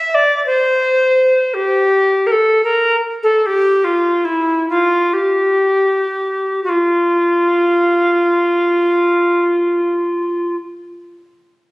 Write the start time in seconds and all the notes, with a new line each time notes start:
Already playing: E5
0.09 E5
0.14 D5
0.46 C5
1.54 G4
2.26 A#4
2.31 A4
2.63 A#4
3.22 A4
3.42 G4 A4
3.84 F4
4.24 E4
4.69 F4
5.13 G4
6.64 F#4
6.69 F4